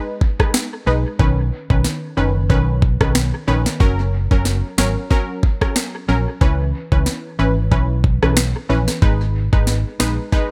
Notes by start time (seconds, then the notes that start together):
Already playing: G#3 D#4 B4
0.21 kick
0.39 G#3 D#4 B4, kick, cross-stick
0.54 finger snap, snare
0.86 B1 G#3 D#4 B4
1.19 B1 D#3 C#4 B4, kick
1.70 B1 D#3 C#4 B4, kick
1.84 snare
2.17 F#1 D#3 C#4 B4
2.50 B1 D#3 C#4 B4, kick
2.82 kick
3.00 B1 D#3 C#4 B4, kick, cross-stick
3.15 finger snap, snare
3.47 A#1 D#3 C#4 B4
3.66 snare
3.80 F#1 F#3 C#4 A#4, kick
4.31 F#1 F#3 C#4 A#4, kick
4.45 snare
4.78 G#1 F#3 C#4 A#4, finger snap, snare
5.10 F#3 C#4 A#4, kick
5.43 kick
5.61 F#3 C#4 A#4, kick, cross-stick
5.76 finger snap, snare
6.08 A#1 F#3 C#4 A#4
6.41 C#2 E3 C#4 B4, kick
6.92 C#2 E3 C#4 B4, kick
7.06 snare
7.39 G#1 E3 C#4 B4
7.71 B1 E3 C#4 B4, kick
8.04 kick
8.22 B1 E3 C#4 B4, cross-stick
8.37 finger snap, snare
8.69 A#1 E3 C#4 B4
8.88 snare
9.02 G#1 G#3 D#4 B4, kick
9.53 G#1 G#3 D#4 B4, kick
9.67 snare
10.00 A#1 G#3 D#4 B4, finger snap, snare
10.32 G#3 D#4 B4, kick